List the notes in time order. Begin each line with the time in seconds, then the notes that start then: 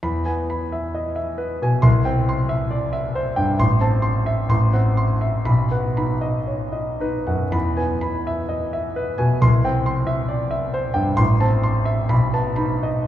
0.03 E2 B5
0.25 B3 G#5
0.50 B5
0.72 E5
0.94 D#5
1.16 E5
1.38 B4
1.62 B2 G#5
1.82 C2 C6
2.05 C4 G5
2.29 C6
2.49 E5
2.71 D5
2.93 E5
3.15 C5
3.36 G2 G5
3.59 A1 C6
3.81 C4 A5
4.02 C6
4.26 E5
4.49 A1 C6
4.73 C4 F#5
4.97 C6
5.21 E5
5.45 B1 B5
5.71 B3 F#5
5.96 D#4 B5
6.21 D#5
6.47 C#5
6.72 D#5
7.00 D#4 B4
7.27 F#2 F#5
7.52 E2 B5
7.77 B3 G#5
8.01 B5
8.27 E5
8.49 D#5
8.73 E5
8.96 B4
9.18 B2 G#5
9.42 C2 C6
9.64 C4 G5
9.86 C6
10.07 E5
10.28 D5
10.51 E5
10.74 C5
10.94 G2 G5
11.17 A1 C6
11.40 C4 A5
11.63 C6
11.85 E5
12.09 B1 B5
12.33 B3 A5
12.56 D#4 B5
12.83 D#5